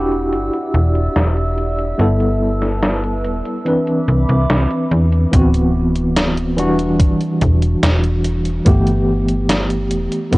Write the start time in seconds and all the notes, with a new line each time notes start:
Already playing: E1 D4 E4 F#4 G4 D5 E5 F#5 E6
0.12 closed hi-hat
0.33 G1, closed hi-hat
0.53 closed hi-hat
0.74 E1, closed hi-hat
0.95 closed hi-hat
1.16 E1, snare, closed hi-hat
1.37 closed hi-hat
1.58 closed hi-hat
1.79 closed hi-hat
1.98 G1 G3 B3 E4 A4 B4 A5, closed hi-hat
2.20 closed hi-hat
2.62 snare, closed hi-hat
2.83 snare, closed hi-hat
3.04 closed hi-hat
3.24 E1, closed hi-hat
3.45 closed hi-hat
3.65 E3 C4 D4 B4 E5 B5 D6, closed hi-hat
3.87 closed hi-hat
4.08 C2, closed hi-hat
4.29 C2, closed hi-hat
4.50 C2, snare, closed hi-hat
4.70 closed hi-hat
4.91 E2, closed hi-hat
5.12 closed hi-hat
5.31 D1 E3 B3 C4 F#4, kick, closed hi-hat
5.54 closed hi-hat
5.96 closed hi-hat
6.16 snare, closed hi-hat
6.37 closed hi-hat
6.56 E1 E3 G3 D4 F#4, closed hi-hat
6.79 closed hi-hat
7.00 G1, kick, closed hi-hat
7.21 closed hi-hat
7.41 E1, kick, closed hi-hat
7.62 closed hi-hat
7.83 E1, snare, closed hi-hat
8.04 closed hi-hat
8.24 closed hi-hat
8.45 closed hi-hat
8.65 G1 E3 A3 B3 G4, kick, closed hi-hat
8.87 closed hi-hat
9.28 closed hi-hat
9.49 snare, closed hi-hat
9.70 closed hi-hat
9.91 E1, closed hi-hat
10.12 closed hi-hat
10.31 D3 B3 C4 E4, kick, snare, closed hi-hat